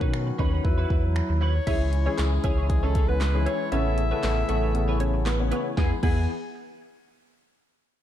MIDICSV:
0, 0, Header, 1, 9, 480
1, 0, Start_track
1, 0, Key_signature, 4, "major"
1, 0, Tempo, 512821
1, 1563, Time_signature, 4, 2, 24, 8
1, 7513, End_track
2, 0, Start_track
2, 0, Title_t, "Alto saxophone"
2, 0, Program_c, 0, 65
2, 1322, Note_on_c, 0, 73, 96
2, 2041, Note_on_c, 0, 68, 87
2, 2055, Note_off_c, 0, 73, 0
2, 2515, Note_off_c, 0, 68, 0
2, 2520, Note_on_c, 0, 68, 92
2, 2648, Note_on_c, 0, 69, 87
2, 2662, Note_off_c, 0, 68, 0
2, 2888, Note_on_c, 0, 71, 103
2, 2902, Note_off_c, 0, 69, 0
2, 3241, Note_on_c, 0, 73, 104
2, 3255, Note_off_c, 0, 71, 0
2, 3474, Note_off_c, 0, 73, 0
2, 3480, Note_on_c, 0, 76, 118
2, 4884, Note_off_c, 0, 76, 0
2, 5402, Note_on_c, 0, 80, 85
2, 5542, Note_off_c, 0, 80, 0
2, 5644, Note_on_c, 0, 80, 95
2, 5867, Note_off_c, 0, 80, 0
2, 7513, End_track
3, 0, Start_track
3, 0, Title_t, "Clean electric guitar"
3, 0, Program_c, 1, 27
3, 7, Note_on_c, 1, 71, 55
3, 14, Note_on_c, 1, 63, 54
3, 19, Note_on_c, 1, 61, 46
3, 110, Note_off_c, 1, 61, 0
3, 113, Note_off_c, 1, 71, 0
3, 116, Note_off_c, 1, 63, 0
3, 360, Note_on_c, 1, 61, 90
3, 366, Note_on_c, 1, 63, 101
3, 372, Note_on_c, 1, 71, 97
3, 477, Note_off_c, 1, 71, 0
3, 483, Note_off_c, 1, 63, 0
3, 488, Note_on_c, 1, 71, 70
3, 489, Note_off_c, 1, 61, 0
3, 495, Note_on_c, 1, 63, 65
3, 500, Note_on_c, 1, 61, 61
3, 593, Note_off_c, 1, 71, 0
3, 597, Note_off_c, 1, 63, 0
3, 598, Note_off_c, 1, 61, 0
3, 727, Note_on_c, 1, 71, 84
3, 734, Note_on_c, 1, 66, 73
3, 739, Note_on_c, 1, 64, 65
3, 830, Note_off_c, 1, 64, 0
3, 836, Note_off_c, 1, 66, 0
3, 841, Note_on_c, 1, 64, 57
3, 842, Note_off_c, 1, 71, 0
3, 848, Note_on_c, 1, 66, 62
3, 853, Note_on_c, 1, 71, 66
3, 958, Note_off_c, 1, 71, 0
3, 959, Note_off_c, 1, 64, 0
3, 963, Note_off_c, 1, 66, 0
3, 1318, Note_on_c, 1, 64, 81
3, 1325, Note_on_c, 1, 66, 85
3, 1331, Note_on_c, 1, 71, 93
3, 1437, Note_off_c, 1, 71, 0
3, 1445, Note_off_c, 1, 66, 0
3, 1468, Note_off_c, 1, 64, 0
3, 1560, Note_on_c, 1, 64, 84
3, 1567, Note_on_c, 1, 68, 93
3, 1572, Note_on_c, 1, 73, 90
3, 1784, Note_off_c, 1, 64, 0
3, 1787, Note_off_c, 1, 68, 0
3, 1790, Note_off_c, 1, 73, 0
3, 1928, Note_on_c, 1, 73, 69
3, 1934, Note_on_c, 1, 68, 58
3, 1940, Note_on_c, 1, 64, 51
3, 2031, Note_off_c, 1, 64, 0
3, 2033, Note_off_c, 1, 73, 0
3, 2036, Note_off_c, 1, 68, 0
3, 2280, Note_on_c, 1, 64, 80
3, 2287, Note_on_c, 1, 68, 87
3, 2292, Note_on_c, 1, 73, 98
3, 2397, Note_off_c, 1, 73, 0
3, 2404, Note_off_c, 1, 68, 0
3, 2408, Note_on_c, 1, 73, 65
3, 2409, Note_off_c, 1, 64, 0
3, 2415, Note_on_c, 1, 68, 62
3, 2421, Note_on_c, 1, 64, 58
3, 2511, Note_off_c, 1, 64, 0
3, 2513, Note_off_c, 1, 73, 0
3, 2517, Note_off_c, 1, 68, 0
3, 2648, Note_on_c, 1, 73, 76
3, 2655, Note_on_c, 1, 68, 72
3, 2660, Note_on_c, 1, 64, 65
3, 2749, Note_off_c, 1, 64, 0
3, 2756, Note_off_c, 1, 68, 0
3, 2760, Note_on_c, 1, 64, 61
3, 2761, Note_off_c, 1, 73, 0
3, 2767, Note_on_c, 1, 68, 69
3, 2773, Note_on_c, 1, 73, 69
3, 2878, Note_off_c, 1, 73, 0
3, 2879, Note_off_c, 1, 64, 0
3, 2883, Note_off_c, 1, 68, 0
3, 3239, Note_on_c, 1, 64, 89
3, 3246, Note_on_c, 1, 68, 89
3, 3252, Note_on_c, 1, 73, 91
3, 3357, Note_off_c, 1, 73, 0
3, 3365, Note_off_c, 1, 68, 0
3, 3389, Note_off_c, 1, 64, 0
3, 3478, Note_on_c, 1, 64, 81
3, 3485, Note_on_c, 1, 71, 89
3, 3491, Note_on_c, 1, 73, 97
3, 3703, Note_off_c, 1, 64, 0
3, 3706, Note_off_c, 1, 71, 0
3, 3709, Note_off_c, 1, 73, 0
3, 3846, Note_on_c, 1, 73, 65
3, 3853, Note_on_c, 1, 71, 60
3, 3858, Note_on_c, 1, 64, 55
3, 3949, Note_off_c, 1, 64, 0
3, 3952, Note_off_c, 1, 73, 0
3, 3953, Note_off_c, 1, 71, 0
3, 4199, Note_on_c, 1, 64, 89
3, 4207, Note_on_c, 1, 71, 90
3, 4212, Note_on_c, 1, 73, 93
3, 4315, Note_off_c, 1, 73, 0
3, 4322, Note_off_c, 1, 71, 0
3, 4327, Note_on_c, 1, 73, 66
3, 4328, Note_off_c, 1, 64, 0
3, 4333, Note_on_c, 1, 71, 55
3, 4339, Note_on_c, 1, 64, 59
3, 4430, Note_off_c, 1, 64, 0
3, 4433, Note_off_c, 1, 73, 0
3, 4436, Note_off_c, 1, 71, 0
3, 4567, Note_on_c, 1, 73, 93
3, 4575, Note_on_c, 1, 71, 82
3, 4580, Note_on_c, 1, 64, 71
3, 4670, Note_off_c, 1, 64, 0
3, 4675, Note_off_c, 1, 71, 0
3, 4679, Note_off_c, 1, 73, 0
3, 5159, Note_on_c, 1, 64, 88
3, 5166, Note_on_c, 1, 71, 89
3, 5171, Note_on_c, 1, 73, 98
3, 5277, Note_off_c, 1, 73, 0
3, 5286, Note_off_c, 1, 71, 0
3, 5309, Note_off_c, 1, 64, 0
3, 5400, Note_on_c, 1, 59, 78
3, 5408, Note_on_c, 1, 64, 84
3, 5414, Note_on_c, 1, 68, 90
3, 5551, Note_off_c, 1, 59, 0
3, 5555, Note_off_c, 1, 64, 0
3, 5558, Note_off_c, 1, 68, 0
3, 5640, Note_on_c, 1, 59, 80
3, 5648, Note_on_c, 1, 64, 81
3, 5654, Note_on_c, 1, 68, 92
3, 5791, Note_off_c, 1, 59, 0
3, 5795, Note_off_c, 1, 64, 0
3, 5799, Note_off_c, 1, 68, 0
3, 7513, End_track
4, 0, Start_track
4, 0, Title_t, "Synth pluck"
4, 0, Program_c, 2, 84
4, 1562, Note_on_c, 2, 76, 103
4, 1570, Note_on_c, 2, 64, 79
4, 1723, Note_off_c, 2, 76, 0
4, 1728, Note_off_c, 2, 64, 0
4, 1929, Note_on_c, 2, 73, 83
4, 1937, Note_on_c, 2, 61, 65
4, 2005, Note_off_c, 2, 73, 0
4, 2010, Note_off_c, 2, 61, 0
4, 2283, Note_on_c, 2, 73, 78
4, 2290, Note_on_c, 2, 61, 66
4, 2443, Note_off_c, 2, 73, 0
4, 2448, Note_off_c, 2, 61, 0
4, 2650, Note_on_c, 2, 73, 79
4, 2657, Note_on_c, 2, 61, 60
4, 2726, Note_off_c, 2, 73, 0
4, 2730, Note_off_c, 2, 61, 0
4, 2890, Note_on_c, 2, 71, 72
4, 2898, Note_on_c, 2, 59, 55
4, 2965, Note_off_c, 2, 71, 0
4, 2971, Note_off_c, 2, 59, 0
4, 3242, Note_on_c, 2, 73, 78
4, 3250, Note_on_c, 2, 61, 64
4, 3327, Note_off_c, 2, 73, 0
4, 3332, Note_off_c, 2, 61, 0
4, 3484, Note_on_c, 2, 73, 97
4, 3492, Note_on_c, 2, 61, 81
4, 3644, Note_off_c, 2, 73, 0
4, 3649, Note_off_c, 2, 61, 0
4, 3849, Note_on_c, 2, 71, 85
4, 3858, Note_on_c, 2, 59, 65
4, 3925, Note_off_c, 2, 71, 0
4, 3931, Note_off_c, 2, 59, 0
4, 4203, Note_on_c, 2, 69, 74
4, 4211, Note_on_c, 2, 57, 58
4, 4548, Note_off_c, 2, 69, 0
4, 4553, Note_off_c, 2, 57, 0
4, 4683, Note_on_c, 2, 73, 79
4, 4690, Note_on_c, 2, 61, 63
4, 4768, Note_off_c, 2, 73, 0
4, 4773, Note_off_c, 2, 61, 0
4, 4922, Note_on_c, 2, 71, 83
4, 4930, Note_on_c, 2, 59, 66
4, 5007, Note_off_c, 2, 71, 0
4, 5013, Note_off_c, 2, 59, 0
4, 5163, Note_on_c, 2, 71, 78
4, 5172, Note_on_c, 2, 59, 64
4, 5248, Note_off_c, 2, 71, 0
4, 5254, Note_off_c, 2, 59, 0
4, 5402, Note_on_c, 2, 59, 84
4, 5542, Note_off_c, 2, 59, 0
4, 5642, Note_on_c, 2, 59, 86
4, 5866, Note_off_c, 2, 59, 0
4, 7513, End_track
5, 0, Start_track
5, 0, Title_t, "Grand piano"
5, 0, Program_c, 3, 0
5, 0, Note_on_c, 3, 51, 92
5, 0, Note_on_c, 3, 61, 78
5, 0, Note_on_c, 3, 71, 98
5, 239, Note_off_c, 3, 51, 0
5, 241, Note_off_c, 3, 61, 0
5, 242, Note_off_c, 3, 71, 0
5, 362, Note_on_c, 3, 51, 90
5, 364, Note_on_c, 3, 61, 80
5, 367, Note_on_c, 3, 71, 95
5, 592, Note_off_c, 3, 71, 0
5, 601, Note_on_c, 3, 54, 90
5, 602, Note_off_c, 3, 51, 0
5, 604, Note_off_c, 3, 61, 0
5, 604, Note_on_c, 3, 64, 86
5, 606, Note_on_c, 3, 71, 103
5, 1373, Note_off_c, 3, 54, 0
5, 1374, Note_off_c, 3, 64, 0
5, 1376, Note_off_c, 3, 71, 0
5, 1561, Note_on_c, 3, 52, 75
5, 1563, Note_on_c, 3, 61, 68
5, 1566, Note_on_c, 3, 68, 82
5, 1826, Note_off_c, 3, 52, 0
5, 1827, Note_off_c, 3, 61, 0
5, 1828, Note_off_c, 3, 68, 0
5, 1928, Note_on_c, 3, 52, 80
5, 1931, Note_on_c, 3, 61, 73
5, 1933, Note_on_c, 3, 68, 87
5, 2190, Note_off_c, 3, 52, 0
5, 2192, Note_off_c, 3, 61, 0
5, 2193, Note_off_c, 3, 68, 0
5, 2281, Note_on_c, 3, 52, 76
5, 2283, Note_on_c, 3, 61, 67
5, 2286, Note_on_c, 3, 64, 79
5, 2461, Note_off_c, 3, 52, 0
5, 2462, Note_off_c, 3, 61, 0
5, 2464, Note_off_c, 3, 64, 0
5, 2521, Note_on_c, 3, 52, 75
5, 2523, Note_on_c, 3, 61, 69
5, 2525, Note_on_c, 3, 68, 83
5, 2962, Note_off_c, 3, 52, 0
5, 2963, Note_off_c, 3, 61, 0
5, 2964, Note_off_c, 3, 68, 0
5, 3127, Note_on_c, 3, 52, 77
5, 3129, Note_on_c, 3, 61, 71
5, 3132, Note_on_c, 3, 68, 87
5, 3390, Note_off_c, 3, 52, 0
5, 3391, Note_off_c, 3, 61, 0
5, 3392, Note_off_c, 3, 68, 0
5, 3480, Note_on_c, 3, 49, 74
5, 3483, Note_on_c, 3, 59, 74
5, 3485, Note_on_c, 3, 69, 86
5, 3745, Note_off_c, 3, 49, 0
5, 3747, Note_off_c, 3, 59, 0
5, 3748, Note_off_c, 3, 69, 0
5, 3847, Note_on_c, 3, 49, 78
5, 3849, Note_on_c, 3, 59, 69
5, 3852, Note_on_c, 3, 69, 84
5, 4110, Note_off_c, 3, 49, 0
5, 4111, Note_off_c, 3, 59, 0
5, 4112, Note_off_c, 3, 69, 0
5, 4200, Note_on_c, 3, 49, 74
5, 4202, Note_on_c, 3, 59, 66
5, 4205, Note_on_c, 3, 69, 84
5, 4380, Note_off_c, 3, 49, 0
5, 4382, Note_off_c, 3, 59, 0
5, 4383, Note_off_c, 3, 69, 0
5, 4441, Note_on_c, 3, 49, 78
5, 4443, Note_on_c, 3, 59, 70
5, 4445, Note_on_c, 3, 69, 81
5, 4882, Note_off_c, 3, 49, 0
5, 4883, Note_off_c, 3, 59, 0
5, 4884, Note_off_c, 3, 69, 0
5, 5049, Note_on_c, 3, 49, 79
5, 5051, Note_on_c, 3, 59, 75
5, 5053, Note_on_c, 3, 61, 89
5, 5311, Note_off_c, 3, 49, 0
5, 5312, Note_off_c, 3, 59, 0
5, 5313, Note_off_c, 3, 61, 0
5, 5404, Note_on_c, 3, 52, 83
5, 5404, Note_on_c, 3, 59, 79
5, 5404, Note_on_c, 3, 68, 97
5, 5543, Note_off_c, 3, 52, 0
5, 5543, Note_off_c, 3, 59, 0
5, 5543, Note_off_c, 3, 68, 0
5, 5643, Note_on_c, 3, 52, 85
5, 5643, Note_on_c, 3, 59, 80
5, 5643, Note_on_c, 3, 68, 90
5, 5866, Note_off_c, 3, 52, 0
5, 5866, Note_off_c, 3, 59, 0
5, 5866, Note_off_c, 3, 68, 0
5, 7513, End_track
6, 0, Start_track
6, 0, Title_t, "Woodwind section"
6, 0, Program_c, 4, 71
6, 0, Note_on_c, 4, 51, 77
6, 0, Note_on_c, 4, 54, 77
6, 0, Note_on_c, 4, 59, 71
6, 0, Note_on_c, 4, 61, 69
6, 0, Note_on_c, 4, 66, 78
6, 573, Note_off_c, 4, 54, 0
6, 593, Note_off_c, 4, 51, 0
6, 594, Note_off_c, 4, 61, 0
6, 594, Note_off_c, 4, 66, 0
6, 602, Note_on_c, 4, 64, 77
6, 603, Note_on_c, 4, 54, 72
6, 1405, Note_off_c, 4, 54, 0
6, 1405, Note_off_c, 4, 59, 0
6, 1405, Note_off_c, 4, 64, 0
6, 1564, Note_on_c, 4, 61, 70
6, 1565, Note_on_c, 4, 56, 74
6, 1565, Note_on_c, 4, 64, 83
6, 3464, Note_off_c, 4, 61, 0
6, 3465, Note_off_c, 4, 56, 0
6, 3481, Note_on_c, 4, 59, 73
6, 3482, Note_on_c, 4, 49, 79
6, 3482, Note_on_c, 4, 52, 68
6, 3482, Note_on_c, 4, 57, 72
6, 5366, Note_off_c, 4, 64, 0
6, 5383, Note_off_c, 4, 49, 0
6, 5383, Note_off_c, 4, 59, 0
6, 5384, Note_off_c, 4, 52, 0
6, 5384, Note_off_c, 4, 57, 0
6, 5404, Note_on_c, 4, 59, 65
6, 5405, Note_on_c, 4, 56, 73
6, 5405, Note_on_c, 4, 64, 77
6, 5627, Note_off_c, 4, 56, 0
6, 5627, Note_off_c, 4, 59, 0
6, 5627, Note_off_c, 4, 64, 0
6, 7513, End_track
7, 0, Start_track
7, 0, Title_t, "Sub bass"
7, 0, Program_c, 5, 38
7, 10, Note_on_c, 5, 47, 82
7, 295, Note_off_c, 5, 47, 0
7, 365, Note_on_c, 5, 39, 101
7, 558, Note_off_c, 5, 39, 0
7, 605, Note_on_c, 5, 40, 102
7, 798, Note_off_c, 5, 40, 0
7, 845, Note_on_c, 5, 40, 103
7, 1141, Note_off_c, 5, 40, 0
7, 1211, Note_on_c, 5, 39, 101
7, 1496, Note_off_c, 5, 39, 0
7, 1563, Note_on_c, 5, 37, 103
7, 1951, Note_off_c, 5, 37, 0
7, 2044, Note_on_c, 5, 37, 101
7, 2237, Note_off_c, 5, 37, 0
7, 2285, Note_on_c, 5, 37, 88
7, 3253, Note_off_c, 5, 37, 0
7, 3483, Note_on_c, 5, 33, 97
7, 3870, Note_off_c, 5, 33, 0
7, 3963, Note_on_c, 5, 33, 104
7, 4157, Note_off_c, 5, 33, 0
7, 4204, Note_on_c, 5, 33, 90
7, 5172, Note_off_c, 5, 33, 0
7, 5404, Note_on_c, 5, 40, 96
7, 5543, Note_off_c, 5, 40, 0
7, 5644, Note_on_c, 5, 40, 102
7, 5867, Note_off_c, 5, 40, 0
7, 7513, End_track
8, 0, Start_track
8, 0, Title_t, "Muted clean electric guitar strokes"
8, 121, Note_on_c, 9, 29, 44
8, 215, Note_off_c, 9, 29, 0
8, 249, Note_on_c, 9, 29, 52
8, 343, Note_off_c, 9, 29, 0
8, 601, Note_on_c, 9, 29, 45
8, 695, Note_off_c, 9, 29, 0
8, 969, Note_on_c, 9, 29, 43
8, 1062, Note_off_c, 9, 29, 0
8, 1081, Note_on_c, 9, 29, 41
8, 1175, Note_off_c, 9, 29, 0
8, 1208, Note_on_c, 9, 29, 47
8, 1301, Note_off_c, 9, 29, 0
8, 1448, Note_on_c, 9, 29, 51
8, 1541, Note_off_c, 9, 29, 0
8, 1802, Note_on_c, 9, 29, 42
8, 1895, Note_off_c, 9, 29, 0
8, 2169, Note_on_c, 9, 29, 43
8, 2263, Note_off_c, 9, 29, 0
8, 2523, Note_on_c, 9, 29, 45
8, 2616, Note_off_c, 9, 29, 0
8, 2889, Note_on_c, 9, 29, 46
8, 2983, Note_off_c, 9, 29, 0
8, 3001, Note_on_c, 9, 29, 38
8, 3095, Note_off_c, 9, 29, 0
8, 3128, Note_on_c, 9, 29, 47
8, 3222, Note_off_c, 9, 29, 0
8, 3368, Note_on_c, 9, 29, 45
8, 3461, Note_off_c, 9, 29, 0
8, 3721, Note_on_c, 9, 29, 39
8, 3814, Note_off_c, 9, 29, 0
8, 3960, Note_on_c, 9, 29, 36
8, 4054, Note_off_c, 9, 29, 0
8, 4088, Note_on_c, 9, 29, 52
8, 4182, Note_off_c, 9, 29, 0
8, 4441, Note_on_c, 9, 29, 49
8, 4535, Note_off_c, 9, 29, 0
8, 4681, Note_on_c, 9, 29, 37
8, 4775, Note_off_c, 9, 29, 0
8, 4809, Note_on_c, 9, 29, 56
8, 4902, Note_off_c, 9, 29, 0
8, 4921, Note_on_c, 9, 29, 40
8, 5014, Note_off_c, 9, 29, 0
8, 5049, Note_on_c, 9, 29, 43
8, 5143, Note_off_c, 9, 29, 0
8, 5288, Note_on_c, 9, 29, 43
8, 5382, Note_off_c, 9, 29, 0
8, 7513, End_track
9, 0, Start_track
9, 0, Title_t, "Drums"
9, 10, Note_on_c, 9, 36, 99
9, 104, Note_off_c, 9, 36, 0
9, 126, Note_on_c, 9, 26, 117
9, 220, Note_off_c, 9, 26, 0
9, 365, Note_on_c, 9, 36, 89
9, 459, Note_off_c, 9, 36, 0
9, 605, Note_on_c, 9, 36, 94
9, 699, Note_off_c, 9, 36, 0
9, 845, Note_on_c, 9, 36, 89
9, 939, Note_off_c, 9, 36, 0
9, 1085, Note_on_c, 9, 26, 101
9, 1178, Note_off_c, 9, 26, 0
9, 1563, Note_on_c, 9, 42, 81
9, 1564, Note_on_c, 9, 36, 101
9, 1564, Note_on_c, 9, 49, 92
9, 1657, Note_off_c, 9, 36, 0
9, 1657, Note_off_c, 9, 42, 0
9, 1657, Note_off_c, 9, 49, 0
9, 1804, Note_on_c, 9, 42, 69
9, 1898, Note_off_c, 9, 42, 0
9, 2042, Note_on_c, 9, 42, 86
9, 2043, Note_on_c, 9, 38, 96
9, 2045, Note_on_c, 9, 39, 114
9, 2135, Note_off_c, 9, 42, 0
9, 2137, Note_off_c, 9, 38, 0
9, 2139, Note_off_c, 9, 39, 0
9, 2281, Note_on_c, 9, 42, 75
9, 2285, Note_on_c, 9, 36, 92
9, 2375, Note_off_c, 9, 42, 0
9, 2378, Note_off_c, 9, 36, 0
9, 2524, Note_on_c, 9, 36, 94
9, 2524, Note_on_c, 9, 42, 77
9, 2618, Note_off_c, 9, 36, 0
9, 2618, Note_off_c, 9, 42, 0
9, 2761, Note_on_c, 9, 42, 77
9, 2765, Note_on_c, 9, 36, 98
9, 2855, Note_off_c, 9, 42, 0
9, 2858, Note_off_c, 9, 36, 0
9, 3002, Note_on_c, 9, 38, 81
9, 3004, Note_on_c, 9, 39, 103
9, 3004, Note_on_c, 9, 42, 81
9, 3096, Note_off_c, 9, 38, 0
9, 3098, Note_off_c, 9, 39, 0
9, 3098, Note_off_c, 9, 42, 0
9, 3244, Note_on_c, 9, 42, 83
9, 3337, Note_off_c, 9, 42, 0
9, 3482, Note_on_c, 9, 42, 87
9, 3576, Note_off_c, 9, 42, 0
9, 3723, Note_on_c, 9, 42, 75
9, 3817, Note_off_c, 9, 42, 0
9, 3962, Note_on_c, 9, 42, 89
9, 3963, Note_on_c, 9, 38, 101
9, 3965, Note_on_c, 9, 39, 126
9, 4055, Note_off_c, 9, 42, 0
9, 4057, Note_off_c, 9, 38, 0
9, 4059, Note_off_c, 9, 39, 0
9, 4201, Note_on_c, 9, 42, 73
9, 4295, Note_off_c, 9, 42, 0
9, 4444, Note_on_c, 9, 42, 79
9, 4538, Note_off_c, 9, 42, 0
9, 4681, Note_on_c, 9, 42, 83
9, 4775, Note_off_c, 9, 42, 0
9, 4922, Note_on_c, 9, 38, 86
9, 4924, Note_on_c, 9, 39, 103
9, 4924, Note_on_c, 9, 42, 85
9, 5016, Note_off_c, 9, 38, 0
9, 5018, Note_off_c, 9, 39, 0
9, 5018, Note_off_c, 9, 42, 0
9, 5163, Note_on_c, 9, 42, 82
9, 5257, Note_off_c, 9, 42, 0
9, 5403, Note_on_c, 9, 38, 89
9, 5404, Note_on_c, 9, 36, 105
9, 5497, Note_off_c, 9, 36, 0
9, 5497, Note_off_c, 9, 38, 0
9, 5643, Note_on_c, 9, 49, 88
9, 5644, Note_on_c, 9, 36, 110
9, 5737, Note_off_c, 9, 36, 0
9, 5737, Note_off_c, 9, 49, 0
9, 7513, End_track
0, 0, End_of_file